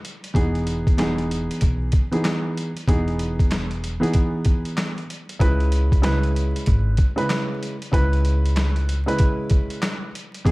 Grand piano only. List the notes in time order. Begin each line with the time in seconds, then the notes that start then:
0.34 E3 B3 D#4 G#4
0.97 E3 B3 D#4 G#4
2.11 E3 B3 D#4 G#4
2.87 E3 B3 D#4 G#4
4.00 E3 B3 D#4 G#4
5.39 C#3 G#3 E4 B4
6.02 C#3 G#3 E4 B4
7.16 C#3 G#3 E4 B4
7.92 C#3 G#3 E4 B4
9.06 C#3 G#3 E4 B4
10.45 E3 B3 D#4 G#4